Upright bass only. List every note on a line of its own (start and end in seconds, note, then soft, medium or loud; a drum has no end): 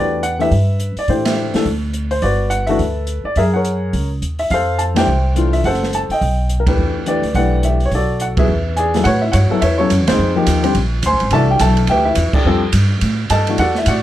0.00 0.49 E2 medium
0.51 0.94 G2 medium
0.96 muted upright bass stroke soft
1.08 1.51 A2 medium
1.54 muted upright bass stroke soft
1.66 2.20 D2 medium
2.22 2.76 G1 medium
2.79 3.22 D2 medium
3.24 muted upright bass stroke soft
3.36 3.90 F#2 medium
3.93 4.20 C#2 medium
4.22 4.48 D#2 medium
4.50 5.04 F2 medium
5.07 5.61 C2 medium
5.64 6.06 F#1 medium
6.09 muted upright bass stroke soft
6.21 6.75 B1 medium
6.78 7.20 E2 medium
7.22 7.33 D2 medium
7.34 7.88 B1 medium
7.91 8.45 B1 medium
8.48 9.02 E2 medium
9.05 9.32 A2 medium
9.34 9.49 G2 medium
9.51 muted upright bass stroke soft
9.62 9.89 E2 medium
9.90 10.00 F#2 medium
10.00 10.09 E2 medium
10.09 10.18 C#2 medium
10.18 10.46 F2 medium
10.47 10.74 D#2 loud
10.75 11.02 A#1 medium
11.03 11.14 D2 medium
11.12 11.21 A#1 medium
11.21 11.30 G#1 medium
11.31 11.59 C2 medium
11.60 11.87 B1 loud
11.88 12.15 D2 medium
12.17 12.32 E2 medium
12.33 muted upright bass stroke soft
12.45 12.72 F2 medium
12.73 13.00 G2 medium
13.02 13.29 A2 medium
13.30 13.57 G2 medium
13.58 13.86 E2 medium
13.86 14.03 A2 loud